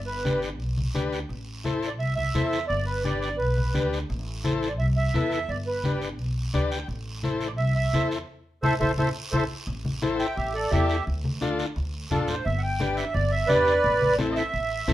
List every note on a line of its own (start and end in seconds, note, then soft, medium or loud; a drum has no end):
0.00 0.59 G1 medium
0.06 0.39 B4 medium
0.25 0.49 D4 medium
0.25 0.50 G4 medium
0.25 0.50 B4 medium
0.25 high conga medium
0.25 short guiro medium
0.42 short guiro medium
0.59 0.88 B1 medium
0.59 long guiro medium
0.77 high conga medium
0.94 1.23 D2 medium
0.94 1.19 D4 medium
0.94 1.19 G4 medium
0.94 1.19 B4 medium
0.94 high conga medium
0.94 short guiro medium
1.13 short guiro medium
1.29 1.99 A1 medium
1.29 long guiro medium
1.64 1.89 E4 medium
1.64 1.89 A4 medium
1.64 1.90 C5 medium
1.64 high conga medium
1.64 short guiro medium
1.83 short guiro medium
1.87 1.92 D5 medium
1.99 2.27 C2 medium
1.99 2.14 E5 loud
1.99 long guiro medium
2.16 2.65 E5 loud
2.16 high conga medium
2.34 2.62 E2 medium
2.34 2.59 E4 medium
2.34 2.59 A4 medium
2.34 2.60 C5 medium
2.34 high conga medium
2.34 short guiro medium
2.53 short guiro medium
2.68 3.40 G1 medium
2.68 2.85 D5 loud
2.68 long guiro medium
2.86 3.03 B4 medium
3.04 3.29 D4 medium
3.04 3.29 G4 medium
3.04 3.29 B4 medium
3.04 3.19 D5 medium
3.04 high conga medium
3.04 short guiro medium
3.20 3.37 D5 medium
3.20 short guiro medium
3.37 3.68 B1 medium
3.37 3.87 B4 medium
3.37 long guiro medium
3.57 high conga medium
3.74 4.03 D2 medium
3.74 3.99 D4 medium
3.74 3.99 G4 medium
3.74 3.99 B4 medium
3.74 high conga medium
3.74 short guiro medium
3.93 short guiro medium
4.10 4.79 A1 medium
4.10 long guiro medium
4.44 4.69 E4 medium
4.44 4.69 A4 medium
4.44 4.69 C5 loud
4.44 high conga medium
4.44 short guiro medium
4.63 short guiro medium
4.68 4.73 D5 medium
4.79 5.07 C2 medium
4.79 4.87 E5 medium
4.79 long guiro medium
4.97 5.51 E5 medium
5.14 5.42 E2 medium
5.14 5.39 E4 medium
5.14 5.39 A4 medium
5.14 5.39 B4 medium
5.14 high conga medium
5.14 short guiro medium
5.32 short guiro medium
5.49 6.18 G1 medium
5.49 5.57 D5 medium
5.49 long guiro medium
5.67 5.99 B4 medium
5.84 6.09 D4 medium
5.84 6.09 G4 medium
5.84 6.09 B4 medium
5.84 high conga medium
5.84 short guiro medium
6.02 short guiro medium
6.18 6.47 B1 medium
6.18 long guiro medium
6.53 6.82 D2 medium
6.53 6.78 D4 medium
6.53 6.78 G4 medium
6.53 6.79 B4 medium
6.53 6.70 D5 medium
6.53 high conga medium
6.53 short guiro medium
6.72 6.88 G5 medium
6.72 short guiro medium
6.88 7.58 A1 medium
6.88 long guiro medium
7.23 7.48 E4 medium
7.23 7.48 A4 medium
7.23 7.48 C5 medium
7.23 high conga medium
7.23 short guiro medium
7.41 short guiro medium
7.47 7.52 D5 medium
7.58 7.86 C2 medium
7.58 7.74 E5 loud
7.58 long guiro medium
7.75 8.08 E5 loud
7.93 8.21 E2 medium
7.93 8.18 E4 medium
7.93 8.18 A4 medium
7.93 8.19 C5 medium
7.93 high conga medium
7.93 short guiro medium
8.11 short guiro medium
8.63 8.76 A1 medium
8.63 8.75 E4 medium
8.63 8.74 A4 loud
8.63 8.75 A4 loud
8.63 8.74 C5 loud
8.63 8.75 C5 medium
8.63 8.74 E5 loud
8.63 high conga loud
8.63 long guiro medium
8.80 8.93 A1 medium
8.80 8.92 E4 medium
8.80 8.92 A4 medium
8.80 8.92 C5 medium
8.80 8.92 E5 medium
8.80 high conga loud
8.80 long guiro loud
8.98 9.11 A1 medium
8.98 9.09 E4 medium
8.98 9.09 A4 medium
8.98 9.09 C5 medium
8.98 9.09 E5 medium
8.98 high conga medium
8.98 long guiro loud
9.32 9.46 A1 medium
9.32 9.44 E4 loud
9.32 9.43 A4 medium
9.32 9.44 A4 medium
9.32 9.43 C5 medium
9.32 9.44 C5 loud
9.32 9.43 E5 medium
9.32 high conga loud
9.32 long guiro medium
9.67 10.23 A1 medium
9.67 high conga soft
9.67 long guiro medium
9.85 high conga medium
10.02 10.26 E4 medium
10.02 10.27 A4 medium
10.02 10.27 C5 loud
10.02 high conga medium
10.02 short guiro medium
10.15 10.35 E5 medium
10.15 10.18 F#5 medium
10.19 10.36 G5 medium
10.19 short guiro medium
10.36 10.65 A1 medium
10.36 10.53 G4 medium
10.36 10.54 E5 medium
10.36 high conga soft
10.36 long guiro medium
10.54 10.70 A4 medium
10.54 10.71 D5 medium
10.71 11.00 E2 medium
10.71 10.97 E4 medium
10.71 11.03 G4 medium
10.71 10.97 A4 medium
10.71 10.97 D5 medium
10.71 11.05 E5 loud
10.71 high conga medium
10.71 short guiro medium
10.89 short guiro medium
11.07 11.62 D2 medium
11.07 high conga soft
11.07 long guiro medium
11.24 high conga medium
11.41 11.65 D4 medium
11.41 11.66 F4 medium
11.41 11.66 A4 loud
11.41 high conga loud
11.41 short guiro medium
11.59 short guiro medium
11.76 12.04 D2 medium
11.76 high conga soft
11.76 long guiro medium
12.10 12.39 A1 medium
12.10 12.35 D4 medium
12.10 12.35 F4 medium
12.10 12.27 A4 medium
12.10 12.36 A4 medium
12.10 high conga medium
12.10 low conga medium
12.10 short guiro medium
12.28 12.45 C5 medium
12.28 low conga medium
12.28 short guiro medium
12.45 13.01 G1 loud
12.45 12.62 E5 medium
12.45 high conga soft
12.45 long guiro medium
12.59 12.61 F#5 medium
12.63 12.96 G5 medium
12.80 13.04 D4 medium
12.80 13.05 G4 medium
12.80 13.05 B4 medium
12.80 high conga medium
12.80 short guiro medium
12.96 13.14 E5 medium
12.96 short guiro medium
13.14 13.42 G1 medium
13.14 13.31 D5 medium
13.14 high conga soft
13.14 long guiro medium
13.31 13.48 E5 medium
13.47 13.77 E2 medium
13.47 13.74 D4 medium
13.47 13.74 G4 medium
13.47 14.14 B4 loud
13.47 13.74 B4 medium
13.47 14.16 D5 loud
13.47 high conga medium
13.47 short guiro medium
13.67 short guiro medium
13.84 14.40 A1 loud
13.84 high conga soft
13.84 long guiro medium
14.01 high conga medium
14.18 14.43 C4 medium
14.18 14.43 E4 medium
14.18 14.43 A4 medium
14.18 high conga medium
14.18 short guiro medium
14.31 14.34 D#5 medium
14.36 14.93 E5 loud
14.36 short guiro medium
14.53 14.81 A1 medium
14.53 high conga soft
14.53 long guiro medium
14.88 14.93 E2 medium
14.88 14.93 C4 medium
14.88 14.93 E4 medium
14.88 14.93 A4 loud
14.88 high conga medium
14.88 low conga medium
14.88 short guiro medium